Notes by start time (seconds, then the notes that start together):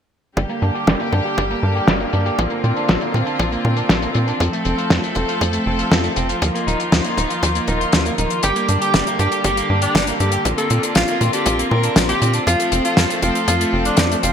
0.37 G1 D3 G3 A#3 G4, kick, closed hi-hat
0.49 A#3, closed hi-hat
0.62 G2 D4, closed hi-hat
0.75 G4, closed hi-hat
0.87 G1 G3, kick, snare, closed hi-hat
1.00 A#3, closed hi-hat
1.12 G2 D4, kick, closed hi-hat
1.25 G4, closed hi-hat
1.38 G1 G3, kick, closed hi-hat
1.50 A#3, closed hi-hat
1.63 G2 D4
1.75 G4, closed hi-hat
1.88 G1 G3, kick, snare, closed hi-hat
2.00 A#3, closed hi-hat
2.13 G2 D4, closed hi-hat
2.26 G4, closed hi-hat
2.38 A#1 F3 C4 F4, kick, closed hi-hat
2.50 A#3, closed hi-hat
2.64 A#2 C4, closed hi-hat
2.76 D4, closed hi-hat
2.88 A#1 F3, kick, snare, closed hi-hat
3.01 A#3, closed hi-hat
3.14 A#2 C4, kick, closed hi-hat
3.27 D4, closed hi-hat
3.39 A#1 F3, kick, closed hi-hat
3.52 A#3, closed hi-hat
3.65 A#2 C4, kick
3.77 D4, closed hi-hat
3.89 A#1 F3, kick, snare, closed hi-hat
4.02 A#3, closed hi-hat
4.14 A#2 C4, closed hi-hat
4.28 D4, closed hi-hat
4.40 F2 F3 A3 A4, kick, closed hi-hat
4.53 A3, closed hi-hat
4.65 F1 C4, closed hi-hat
4.78 F4, closed hi-hat
4.90 F2 F3, kick, snare, closed hi-hat
5.03 A3, closed hi-hat
5.15 F1 C4, kick, closed hi-hat
5.28 F4, closed hi-hat
5.41 F2 F3, kick, closed hi-hat
5.53 A3, closed hi-hat
5.66 F1 C4
5.79 F4, closed hi-hat
5.92 F2 F3, kick, snare, closed hi-hat
6.04 A3, closed hi-hat
6.16 F1 C4, closed hi-hat
6.29 F4, closed hi-hat
6.42 D#2 D#3 F3 A#3 F4, kick, closed hi-hat
6.54 A#3, closed hi-hat
6.67 D#1 D#4, closed hi-hat
6.80 F4, closed hi-hat
6.92 D#2 F3, kick, snare, closed hi-hat
7.04 A#3, closed hi-hat
7.17 D#1 D#4, kick, closed hi-hat
7.30 F4, closed hi-hat
7.43 D#2 F3, kick, closed hi-hat
7.55 A#3, closed hi-hat
7.67 D#1 D#4, kick, closed hi-hat
7.81 F4, closed hi-hat
7.92 D#2 F3, kick, snare, closed hi-hat
8.06 A#3, closed hi-hat
8.18 D#1 D#4, closed hi-hat
8.30 F4, closed hi-hat
8.43 G1 D3 G3 G4, kick, closed hi-hat
8.56 A#3, closed hi-hat
8.69 G2 D4, closed hi-hat
8.81 G4, closed hi-hat
8.94 G1 G3, kick, snare, closed hi-hat
9.07 A#3, closed hi-hat
9.19 G2 D4 G4, kick, closed hi-hat
9.32 G4, closed hi-hat
9.44 G1 G3 G4, kick, closed hi-hat
9.57 A#3, closed hi-hat
9.70 G2 D4
9.82 D4 G4, closed hi-hat
9.95 G1 G3, kick, snare, closed hi-hat
10.07 A#3, closed hi-hat
10.20 G2 D4 G4, closed hi-hat
10.32 G4, closed hi-hat
10.45 A#1 F3 C4 F4, kick, closed hi-hat
10.58 A#3 A4, closed hi-hat
10.70 A#2 C4, closed hi-hat
10.83 D4, closed hi-hat
10.95 A#1 F3 F4, kick, snare, closed hi-hat
11.08 A#3, closed hi-hat
11.21 A#2 C4, kick, closed hi-hat
11.33 D4 G4, closed hi-hat
11.46 A#1 F3, kick, closed hi-hat
11.59 A#3, closed hi-hat
11.71 A#2 C4 A#4, kick
11.83 D4, closed hi-hat
11.96 A#1 F3, kick, snare, closed hi-hat
12.09 A#3 G4, closed hi-hat
12.22 A#2 C4, closed hi-hat
12.33 D4, closed hi-hat
12.47 F2 F3 A3 F4 A4, kick, closed hi-hat
12.59 A3, closed hi-hat
12.72 F1 C4, closed hi-hat
12.85 F4, closed hi-hat
12.97 F2 F3, kick, snare, closed hi-hat
13.10 A3, closed hi-hat
13.22 F1 C4 F4, kick, closed hi-hat
13.35 F4, closed hi-hat
13.48 F2 F3 F4, kick, closed hi-hat
13.60 A3, closed hi-hat
13.73 F1 C4
13.85 D4 F4, closed hi-hat
13.97 F2 F3, kick, snare, closed hi-hat
14.11 A3, closed hi-hat
14.23 F1 C4 F4, closed hi-hat